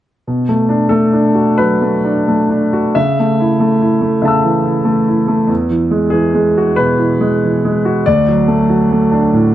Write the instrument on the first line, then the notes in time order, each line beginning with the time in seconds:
grand piano
0.27 B2
0.49 A3
0.69 D4
0.89 A3 A4
1.13 D4
1.35 F#4
1.58 F#3 B4
1.82 A3
2.05 D4
2.28 A3
2.49 D4
2.73 F#4
2.95 C#3 E5
3.20 A3
3.40 E4
3.60 A3
3.82 E4
4.01 A3
4.22 C#3 E5 A5
4.28 E6
4.44 E3
4.66 E4
4.85 A3
5.08 E4
5.28 A3
5.47 E2
5.70 E3
5.91 G#3
6.10 E3 G#4
6.34 G#3
6.58 F#4
6.76 B2 B4
6.98 E3
7.21 G#3
7.44 E3
7.65 G#3
7.85 F#4
8.06 D2 D5
8.28 F#3
8.48 A3
8.69 F#3
8.92 A3
9.11 D4
9.33 A2